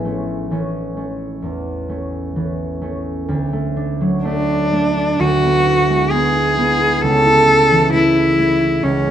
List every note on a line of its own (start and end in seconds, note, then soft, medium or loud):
0.00 3.33 A1 soft
0.00 3.32 E4 soft
0.00 1.20 A4 soft
0.00 3.32 E5 soft
0.05 0.50 A3 soft
0.05 0.51 C#4 soft
0.51 2.35 E3 soft
0.51 0.95 A3 soft
0.51 0.96 C#4 soft
0.97 1.88 A3 soft
0.97 1.88 C#4 soft
1.42 3.33 E2 soft
1.89 2.35 A3 soft
1.89 2.35 C#4 soft
2.36 3.33 E3 soft
2.36 2.80 A3 soft
2.36 2.81 C#4 soft
2.81 3.52 A3 soft
2.81 3.33 C#4 soft
3.28 5.19 D2 medium
3.53 4.24 A3 soft
3.77 4.48 D4 soft
4.01 5.24 F#3 soft
4.24 4.71 A3 soft
4.24 5.21 D4 medium
4.49 4.96 D4 soft
4.72 5.24 A3 soft
4.97 7.06 D4 soft
5.20 7.06 D2 medium
5.20 6.13 F#4 medium
5.43 6.12 B3 soft
5.67 6.34 E4 soft
5.89 7.06 G#3 soft
6.12 6.57 B3 soft
6.12 7.03 G#4 medium
6.35 6.79 E4 soft
6.58 7.07 B3 soft
6.81 7.25 E4 soft
7.02 8.83 C#2 medium
7.02 7.93 A4 medium
7.26 8.15 E4 soft
7.48 7.93 A3 soft
7.71 9.11 E3 soft
7.94 8.38 A3 medium
7.94 8.84 E4 medium
8.16 8.60 E4 soft
8.39 9.05 A3 soft
8.61 9.11 E4 soft
8.83 9.11 C#2 soft
8.83 9.11 C#4 medium
9.06 9.11 A3 soft